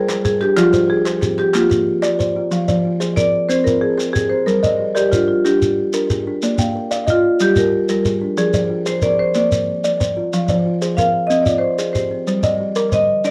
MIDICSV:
0, 0, Header, 1, 6, 480
1, 0, Start_track
1, 0, Tempo, 325027
1, 842, Time_signature, 12, 3, 24, 8
1, 19655, End_track
2, 0, Start_track
2, 0, Title_t, "Kalimba"
2, 0, Program_c, 0, 108
2, 131, Note_on_c, 0, 70, 84
2, 364, Note_on_c, 0, 68, 71
2, 606, Note_off_c, 0, 70, 0
2, 844, Note_on_c, 0, 53, 98
2, 1082, Note_off_c, 0, 68, 0
2, 1088, Note_on_c, 0, 72, 70
2, 1322, Note_off_c, 0, 53, 0
2, 1549, Note_off_c, 0, 72, 0
2, 1566, Note_on_c, 0, 72, 66
2, 1570, Note_on_c, 0, 68, 82
2, 1817, Note_on_c, 0, 67, 66
2, 2044, Note_off_c, 0, 68, 0
2, 2282, Note_off_c, 0, 72, 0
2, 2289, Note_on_c, 0, 58, 85
2, 2528, Note_off_c, 0, 67, 0
2, 2764, Note_off_c, 0, 58, 0
2, 2989, Note_on_c, 0, 74, 86
2, 3234, Note_on_c, 0, 72, 63
2, 3474, Note_off_c, 0, 74, 0
2, 3713, Note_on_c, 0, 53, 77
2, 3956, Note_off_c, 0, 72, 0
2, 3960, Note_on_c, 0, 74, 63
2, 4196, Note_off_c, 0, 53, 0
2, 4432, Note_on_c, 0, 68, 68
2, 4432, Note_on_c, 0, 72, 67
2, 4676, Note_on_c, 0, 70, 57
2, 4680, Note_off_c, 0, 74, 0
2, 4916, Note_off_c, 0, 68, 0
2, 5156, Note_off_c, 0, 72, 0
2, 5159, Note_on_c, 0, 60, 87
2, 5398, Note_off_c, 0, 70, 0
2, 5640, Note_off_c, 0, 60, 0
2, 5870, Note_on_c, 0, 68, 79
2, 6105, Note_on_c, 0, 67, 61
2, 6356, Note_off_c, 0, 68, 0
2, 6595, Note_on_c, 0, 55, 78
2, 6833, Note_on_c, 0, 75, 71
2, 6834, Note_off_c, 0, 67, 0
2, 7079, Note_off_c, 0, 55, 0
2, 7314, Note_on_c, 0, 70, 75
2, 7316, Note_on_c, 0, 74, 67
2, 7558, Note_off_c, 0, 75, 0
2, 7558, Note_on_c, 0, 72, 63
2, 7799, Note_off_c, 0, 70, 0
2, 8041, Note_off_c, 0, 74, 0
2, 8048, Note_on_c, 0, 62, 83
2, 8282, Note_off_c, 0, 72, 0
2, 8527, Note_off_c, 0, 62, 0
2, 8771, Note_on_c, 0, 70, 75
2, 9009, Note_on_c, 0, 68, 68
2, 9248, Note_off_c, 0, 70, 0
2, 9494, Note_on_c, 0, 58, 85
2, 9728, Note_off_c, 0, 68, 0
2, 9728, Note_on_c, 0, 79, 70
2, 9970, Note_off_c, 0, 58, 0
2, 10203, Note_on_c, 0, 74, 79
2, 10207, Note_on_c, 0, 77, 73
2, 10434, Note_on_c, 0, 75, 60
2, 10447, Note_off_c, 0, 79, 0
2, 10685, Note_off_c, 0, 74, 0
2, 10927, Note_off_c, 0, 77, 0
2, 10933, Note_on_c, 0, 55, 79
2, 11160, Note_off_c, 0, 75, 0
2, 11410, Note_off_c, 0, 55, 0
2, 11653, Note_on_c, 0, 70, 80
2, 11897, Note_on_c, 0, 68, 65
2, 12130, Note_off_c, 0, 70, 0
2, 12368, Note_on_c, 0, 53, 76
2, 12612, Note_off_c, 0, 68, 0
2, 12618, Note_on_c, 0, 74, 66
2, 12847, Note_off_c, 0, 53, 0
2, 13085, Note_on_c, 0, 72, 67
2, 13086, Note_on_c, 0, 68, 74
2, 13326, Note_on_c, 0, 70, 66
2, 13332, Note_off_c, 0, 74, 0
2, 13566, Note_off_c, 0, 68, 0
2, 13806, Note_off_c, 0, 72, 0
2, 13813, Note_on_c, 0, 58, 81
2, 14046, Note_off_c, 0, 70, 0
2, 14289, Note_off_c, 0, 58, 0
2, 14536, Note_on_c, 0, 74, 78
2, 14772, Note_on_c, 0, 72, 62
2, 15010, Note_off_c, 0, 74, 0
2, 15259, Note_on_c, 0, 53, 84
2, 15489, Note_off_c, 0, 72, 0
2, 15496, Note_on_c, 0, 74, 65
2, 15732, Note_off_c, 0, 53, 0
2, 15974, Note_on_c, 0, 68, 74
2, 15976, Note_on_c, 0, 72, 68
2, 16210, Note_off_c, 0, 74, 0
2, 16226, Note_on_c, 0, 70, 64
2, 16449, Note_off_c, 0, 68, 0
2, 16689, Note_on_c, 0, 60, 76
2, 16690, Note_off_c, 0, 72, 0
2, 16935, Note_off_c, 0, 70, 0
2, 17166, Note_off_c, 0, 60, 0
2, 17404, Note_on_c, 0, 68, 80
2, 17655, Note_on_c, 0, 67, 60
2, 17884, Note_off_c, 0, 68, 0
2, 18125, Note_on_c, 0, 55, 73
2, 18360, Note_on_c, 0, 75, 62
2, 18370, Note_off_c, 0, 67, 0
2, 18604, Note_off_c, 0, 55, 0
2, 18842, Note_on_c, 0, 70, 85
2, 18848, Note_on_c, 0, 86, 66
2, 19082, Note_off_c, 0, 75, 0
2, 19083, Note_on_c, 0, 72, 60
2, 19323, Note_off_c, 0, 70, 0
2, 19559, Note_on_c, 0, 62, 76
2, 19566, Note_off_c, 0, 86, 0
2, 19655, Note_off_c, 0, 62, 0
2, 19655, Note_off_c, 0, 72, 0
2, 19655, End_track
3, 0, Start_track
3, 0, Title_t, "Marimba"
3, 0, Program_c, 1, 12
3, 0, Note_on_c, 1, 68, 86
3, 350, Note_off_c, 1, 68, 0
3, 368, Note_on_c, 1, 68, 86
3, 602, Note_on_c, 1, 67, 93
3, 612, Note_off_c, 1, 68, 0
3, 835, Note_on_c, 1, 65, 105
3, 848, Note_off_c, 1, 67, 0
3, 1327, Note_on_c, 1, 68, 98
3, 1332, Note_off_c, 1, 65, 0
3, 2052, Note_on_c, 1, 67, 91
3, 2064, Note_off_c, 1, 68, 0
3, 2286, Note_on_c, 1, 65, 89
3, 2293, Note_off_c, 1, 67, 0
3, 3183, Note_off_c, 1, 65, 0
3, 4671, Note_on_c, 1, 74, 94
3, 5148, Note_on_c, 1, 72, 102
3, 5170, Note_off_c, 1, 74, 0
3, 5378, Note_on_c, 1, 70, 96
3, 5401, Note_off_c, 1, 72, 0
3, 5631, Note_on_c, 1, 68, 78
3, 5637, Note_off_c, 1, 70, 0
3, 6084, Note_off_c, 1, 68, 0
3, 6101, Note_on_c, 1, 68, 84
3, 6341, Note_on_c, 1, 72, 88
3, 6359, Note_off_c, 1, 68, 0
3, 6591, Note_on_c, 1, 70, 103
3, 6599, Note_off_c, 1, 72, 0
3, 7266, Note_off_c, 1, 70, 0
3, 7306, Note_on_c, 1, 67, 84
3, 7554, Note_on_c, 1, 65, 71
3, 7562, Note_off_c, 1, 67, 0
3, 7777, Note_off_c, 1, 65, 0
3, 7794, Note_on_c, 1, 65, 73
3, 8041, Note_on_c, 1, 67, 78
3, 8047, Note_off_c, 1, 65, 0
3, 8545, Note_off_c, 1, 67, 0
3, 10489, Note_on_c, 1, 65, 78
3, 10955, Note_on_c, 1, 67, 91
3, 10961, Note_off_c, 1, 65, 0
3, 11165, Note_off_c, 1, 67, 0
3, 11187, Note_on_c, 1, 70, 85
3, 11650, Note_off_c, 1, 70, 0
3, 11667, Note_on_c, 1, 70, 86
3, 12372, Note_on_c, 1, 68, 99
3, 12398, Note_off_c, 1, 70, 0
3, 13100, Note_on_c, 1, 72, 88
3, 13111, Note_off_c, 1, 68, 0
3, 13333, Note_on_c, 1, 74, 104
3, 13340, Note_off_c, 1, 72, 0
3, 13575, Note_on_c, 1, 72, 86
3, 13577, Note_off_c, 1, 74, 0
3, 13804, Note_on_c, 1, 74, 88
3, 13818, Note_off_c, 1, 72, 0
3, 14474, Note_off_c, 1, 74, 0
3, 16197, Note_on_c, 1, 77, 98
3, 16641, Note_on_c, 1, 75, 100
3, 16696, Note_off_c, 1, 77, 0
3, 16876, Note_on_c, 1, 74, 79
3, 16910, Note_off_c, 1, 75, 0
3, 17105, Note_on_c, 1, 72, 80
3, 17148, Note_off_c, 1, 74, 0
3, 17598, Note_off_c, 1, 72, 0
3, 17616, Note_on_c, 1, 72, 69
3, 17730, Note_off_c, 1, 72, 0
3, 19101, Note_on_c, 1, 75, 108
3, 19540, Note_off_c, 1, 75, 0
3, 19568, Note_on_c, 1, 74, 107
3, 19655, Note_off_c, 1, 74, 0
3, 19655, End_track
4, 0, Start_track
4, 0, Title_t, "Kalimba"
4, 0, Program_c, 2, 108
4, 0, Note_on_c, 2, 79, 77
4, 132, Note_on_c, 2, 55, 81
4, 371, Note_off_c, 2, 79, 0
4, 378, Note_on_c, 2, 70, 66
4, 606, Note_off_c, 2, 55, 0
4, 611, Note_on_c, 2, 62, 73
4, 840, Note_on_c, 2, 74, 65
4, 1076, Note_on_c, 2, 53, 81
4, 1076, Note_on_c, 2, 72, 73
4, 1085, Note_off_c, 2, 62, 0
4, 1089, Note_off_c, 2, 70, 0
4, 1320, Note_off_c, 2, 74, 0
4, 1557, Note_off_c, 2, 53, 0
4, 1567, Note_on_c, 2, 65, 64
4, 1797, Note_off_c, 2, 72, 0
4, 1804, Note_on_c, 2, 60, 91
4, 2265, Note_off_c, 2, 60, 0
4, 2283, Note_off_c, 2, 65, 0
4, 2283, Note_on_c, 2, 60, 70
4, 2283, Note_on_c, 2, 67, 67
4, 2521, Note_off_c, 2, 60, 0
4, 2526, Note_on_c, 2, 70, 66
4, 2761, Note_off_c, 2, 67, 0
4, 3009, Note_on_c, 2, 58, 70
4, 3242, Note_off_c, 2, 70, 0
4, 3247, Note_on_c, 2, 74, 68
4, 3484, Note_off_c, 2, 58, 0
4, 3489, Note_on_c, 2, 65, 77
4, 3735, Note_on_c, 2, 77, 63
4, 3963, Note_off_c, 2, 74, 0
4, 3964, Note_off_c, 2, 65, 0
4, 3968, Note_on_c, 2, 72, 65
4, 3973, Note_on_c, 2, 53, 70
4, 4207, Note_off_c, 2, 77, 0
4, 4207, Note_on_c, 2, 65, 63
4, 4446, Note_off_c, 2, 53, 0
4, 4446, Note_on_c, 2, 68, 61
4, 4684, Note_off_c, 2, 72, 0
4, 4685, Note_on_c, 2, 60, 85
4, 4923, Note_off_c, 2, 65, 0
4, 5142, Note_off_c, 2, 60, 0
4, 5160, Note_on_c, 2, 60, 73
4, 5163, Note_off_c, 2, 68, 0
4, 5403, Note_on_c, 2, 65, 66
4, 5640, Note_off_c, 2, 60, 0
4, 5872, Note_on_c, 2, 60, 74
4, 6122, Note_off_c, 2, 65, 0
4, 6133, Note_on_c, 2, 68, 60
4, 6357, Note_off_c, 2, 60, 0
4, 6375, Note_on_c, 2, 60, 68
4, 6611, Note_on_c, 2, 72, 59
4, 6848, Note_off_c, 2, 68, 0
4, 6849, Note_off_c, 2, 60, 0
4, 6856, Note_on_c, 2, 55, 75
4, 6861, Note_on_c, 2, 74, 66
4, 7087, Note_off_c, 2, 72, 0
4, 7088, Note_on_c, 2, 67, 57
4, 7330, Note_off_c, 2, 55, 0
4, 7340, Note_on_c, 2, 70, 66
4, 7572, Note_off_c, 2, 74, 0
4, 7574, Note_on_c, 2, 62, 75
4, 7806, Note_off_c, 2, 67, 0
4, 8036, Note_off_c, 2, 62, 0
4, 8053, Note_off_c, 2, 70, 0
4, 8053, Note_on_c, 2, 62, 76
4, 8529, Note_off_c, 2, 62, 0
4, 8770, Note_on_c, 2, 62, 73
4, 9010, Note_on_c, 2, 70, 63
4, 9244, Note_off_c, 2, 62, 0
4, 9261, Note_on_c, 2, 62, 74
4, 9503, Note_on_c, 2, 74, 65
4, 9727, Note_on_c, 2, 77, 65
4, 9728, Note_off_c, 2, 70, 0
4, 9728, Note_on_c, 2, 58, 77
4, 9734, Note_off_c, 2, 62, 0
4, 9970, Note_on_c, 2, 70, 65
4, 9975, Note_off_c, 2, 74, 0
4, 10207, Note_off_c, 2, 58, 0
4, 10210, Note_on_c, 2, 74, 57
4, 10447, Note_off_c, 2, 77, 0
4, 10449, Note_on_c, 2, 65, 78
4, 10688, Note_off_c, 2, 70, 0
4, 10919, Note_off_c, 2, 65, 0
4, 10928, Note_off_c, 2, 74, 0
4, 10937, Note_on_c, 2, 65, 80
4, 11172, Note_off_c, 2, 65, 0
4, 11174, Note_on_c, 2, 67, 68
4, 11653, Note_on_c, 2, 55, 68
4, 11891, Note_off_c, 2, 67, 0
4, 11892, Note_on_c, 2, 70, 62
4, 12130, Note_off_c, 2, 55, 0
4, 12131, Note_on_c, 2, 62, 75
4, 12371, Note_on_c, 2, 74, 67
4, 12603, Note_on_c, 2, 72, 64
4, 12609, Note_off_c, 2, 62, 0
4, 12609, Note_on_c, 2, 53, 75
4, 12610, Note_off_c, 2, 70, 0
4, 12843, Note_on_c, 2, 65, 63
4, 12849, Note_off_c, 2, 74, 0
4, 13088, Note_off_c, 2, 53, 0
4, 13088, Note_on_c, 2, 68, 57
4, 13325, Note_off_c, 2, 72, 0
4, 13338, Note_on_c, 2, 60, 77
4, 13564, Note_off_c, 2, 65, 0
4, 13807, Note_off_c, 2, 68, 0
4, 13812, Note_off_c, 2, 60, 0
4, 13827, Note_on_c, 2, 60, 82
4, 14057, Note_off_c, 2, 60, 0
4, 14059, Note_on_c, 2, 70, 70
4, 14538, Note_on_c, 2, 58, 66
4, 14772, Note_off_c, 2, 70, 0
4, 14774, Note_on_c, 2, 74, 64
4, 15012, Note_off_c, 2, 58, 0
4, 15016, Note_on_c, 2, 65, 72
4, 15266, Note_on_c, 2, 77, 69
4, 15489, Note_off_c, 2, 74, 0
4, 15491, Note_off_c, 2, 65, 0
4, 15503, Note_on_c, 2, 53, 78
4, 15508, Note_on_c, 2, 72, 67
4, 15735, Note_off_c, 2, 77, 0
4, 15741, Note_on_c, 2, 65, 69
4, 15974, Note_off_c, 2, 53, 0
4, 15985, Note_on_c, 2, 68, 62
4, 16216, Note_off_c, 2, 72, 0
4, 16227, Note_on_c, 2, 60, 86
4, 16453, Note_off_c, 2, 65, 0
4, 16671, Note_off_c, 2, 60, 0
4, 16689, Note_on_c, 2, 60, 75
4, 16694, Note_off_c, 2, 68, 0
4, 16921, Note_on_c, 2, 65, 67
4, 17166, Note_off_c, 2, 60, 0
4, 17403, Note_on_c, 2, 60, 76
4, 17637, Note_on_c, 2, 68, 58
4, 17642, Note_off_c, 2, 65, 0
4, 17864, Note_off_c, 2, 60, 0
4, 17882, Note_on_c, 2, 60, 68
4, 18133, Note_on_c, 2, 72, 68
4, 18361, Note_off_c, 2, 68, 0
4, 18363, Note_off_c, 2, 60, 0
4, 18363, Note_on_c, 2, 55, 71
4, 18364, Note_on_c, 2, 74, 68
4, 18608, Note_off_c, 2, 72, 0
4, 18610, Note_on_c, 2, 67, 58
4, 18843, Note_off_c, 2, 55, 0
4, 18850, Note_on_c, 2, 70, 62
4, 19084, Note_off_c, 2, 74, 0
4, 19096, Note_on_c, 2, 50, 84
4, 19327, Note_off_c, 2, 67, 0
4, 19567, Note_off_c, 2, 70, 0
4, 19567, Note_on_c, 2, 62, 76
4, 19570, Note_off_c, 2, 50, 0
4, 19655, Note_off_c, 2, 62, 0
4, 19655, End_track
5, 0, Start_track
5, 0, Title_t, "Shekere"
5, 135, Note_on_c, 9, 82, 57
5, 283, Note_off_c, 9, 82, 0
5, 369, Note_on_c, 9, 82, 68
5, 516, Note_off_c, 9, 82, 0
5, 854, Note_on_c, 9, 82, 58
5, 1002, Note_off_c, 9, 82, 0
5, 1082, Note_on_c, 9, 82, 64
5, 1230, Note_off_c, 9, 82, 0
5, 1569, Note_on_c, 9, 82, 66
5, 1716, Note_off_c, 9, 82, 0
5, 1808, Note_on_c, 9, 82, 76
5, 1955, Note_off_c, 9, 82, 0
5, 2279, Note_on_c, 9, 82, 60
5, 2427, Note_off_c, 9, 82, 0
5, 2529, Note_on_c, 9, 82, 73
5, 2676, Note_off_c, 9, 82, 0
5, 3008, Note_on_c, 9, 82, 59
5, 3156, Note_off_c, 9, 82, 0
5, 3251, Note_on_c, 9, 82, 63
5, 3398, Note_off_c, 9, 82, 0
5, 3713, Note_on_c, 9, 82, 49
5, 3860, Note_off_c, 9, 82, 0
5, 3963, Note_on_c, 9, 82, 62
5, 4111, Note_off_c, 9, 82, 0
5, 4444, Note_on_c, 9, 82, 62
5, 4592, Note_off_c, 9, 82, 0
5, 4681, Note_on_c, 9, 82, 80
5, 4828, Note_off_c, 9, 82, 0
5, 5169, Note_on_c, 9, 82, 58
5, 5316, Note_off_c, 9, 82, 0
5, 5417, Note_on_c, 9, 82, 72
5, 5565, Note_off_c, 9, 82, 0
5, 5902, Note_on_c, 9, 82, 58
5, 6050, Note_off_c, 9, 82, 0
5, 6139, Note_on_c, 9, 82, 76
5, 6287, Note_off_c, 9, 82, 0
5, 6615, Note_on_c, 9, 82, 50
5, 6762, Note_off_c, 9, 82, 0
5, 6848, Note_on_c, 9, 82, 69
5, 6996, Note_off_c, 9, 82, 0
5, 7332, Note_on_c, 9, 82, 68
5, 7479, Note_off_c, 9, 82, 0
5, 7568, Note_on_c, 9, 82, 85
5, 7716, Note_off_c, 9, 82, 0
5, 8058, Note_on_c, 9, 82, 65
5, 8206, Note_off_c, 9, 82, 0
5, 8299, Note_on_c, 9, 82, 81
5, 8447, Note_off_c, 9, 82, 0
5, 8759, Note_on_c, 9, 82, 72
5, 8907, Note_off_c, 9, 82, 0
5, 9009, Note_on_c, 9, 82, 76
5, 9156, Note_off_c, 9, 82, 0
5, 9483, Note_on_c, 9, 82, 65
5, 9631, Note_off_c, 9, 82, 0
5, 9720, Note_on_c, 9, 82, 83
5, 9868, Note_off_c, 9, 82, 0
5, 10211, Note_on_c, 9, 82, 75
5, 10358, Note_off_c, 9, 82, 0
5, 10450, Note_on_c, 9, 82, 80
5, 10598, Note_off_c, 9, 82, 0
5, 10926, Note_on_c, 9, 82, 70
5, 11074, Note_off_c, 9, 82, 0
5, 11164, Note_on_c, 9, 82, 81
5, 11312, Note_off_c, 9, 82, 0
5, 11649, Note_on_c, 9, 82, 70
5, 11797, Note_off_c, 9, 82, 0
5, 11891, Note_on_c, 9, 82, 69
5, 12039, Note_off_c, 9, 82, 0
5, 12369, Note_on_c, 9, 82, 59
5, 12517, Note_off_c, 9, 82, 0
5, 12605, Note_on_c, 9, 82, 78
5, 12753, Note_off_c, 9, 82, 0
5, 13084, Note_on_c, 9, 82, 66
5, 13232, Note_off_c, 9, 82, 0
5, 13318, Note_on_c, 9, 82, 77
5, 13466, Note_off_c, 9, 82, 0
5, 13800, Note_on_c, 9, 82, 60
5, 13947, Note_off_c, 9, 82, 0
5, 14056, Note_on_c, 9, 82, 79
5, 14204, Note_off_c, 9, 82, 0
5, 14534, Note_on_c, 9, 82, 62
5, 14681, Note_off_c, 9, 82, 0
5, 14778, Note_on_c, 9, 82, 74
5, 14925, Note_off_c, 9, 82, 0
5, 15255, Note_on_c, 9, 82, 54
5, 15403, Note_off_c, 9, 82, 0
5, 15481, Note_on_c, 9, 82, 67
5, 15629, Note_off_c, 9, 82, 0
5, 15975, Note_on_c, 9, 82, 64
5, 16122, Note_off_c, 9, 82, 0
5, 16213, Note_on_c, 9, 82, 76
5, 16361, Note_off_c, 9, 82, 0
5, 16695, Note_on_c, 9, 82, 58
5, 16842, Note_off_c, 9, 82, 0
5, 16923, Note_on_c, 9, 82, 76
5, 17071, Note_off_c, 9, 82, 0
5, 17406, Note_on_c, 9, 82, 56
5, 17554, Note_off_c, 9, 82, 0
5, 17650, Note_on_c, 9, 82, 60
5, 17798, Note_off_c, 9, 82, 0
5, 18124, Note_on_c, 9, 82, 47
5, 18271, Note_off_c, 9, 82, 0
5, 18358, Note_on_c, 9, 82, 67
5, 18505, Note_off_c, 9, 82, 0
5, 18837, Note_on_c, 9, 82, 65
5, 18985, Note_off_c, 9, 82, 0
5, 19081, Note_on_c, 9, 82, 71
5, 19229, Note_off_c, 9, 82, 0
5, 19558, Note_on_c, 9, 82, 53
5, 19655, Note_off_c, 9, 82, 0
5, 19655, End_track
6, 0, Start_track
6, 0, Title_t, "Drums"
6, 137, Note_on_c, 9, 39, 55
6, 285, Note_off_c, 9, 39, 0
6, 614, Note_on_c, 9, 39, 22
6, 762, Note_off_c, 9, 39, 0
6, 846, Note_on_c, 9, 39, 67
6, 994, Note_off_c, 9, 39, 0
6, 1087, Note_on_c, 9, 39, 23
6, 1234, Note_off_c, 9, 39, 0
6, 1566, Note_on_c, 9, 39, 51
6, 1713, Note_off_c, 9, 39, 0
6, 1803, Note_on_c, 9, 39, 20
6, 1950, Note_off_c, 9, 39, 0
6, 2047, Note_on_c, 9, 39, 22
6, 2195, Note_off_c, 9, 39, 0
6, 2275, Note_on_c, 9, 39, 62
6, 2423, Note_off_c, 9, 39, 0
6, 2515, Note_on_c, 9, 39, 19
6, 2663, Note_off_c, 9, 39, 0
6, 2998, Note_on_c, 9, 39, 46
6, 3146, Note_off_c, 9, 39, 0
6, 19655, End_track
0, 0, End_of_file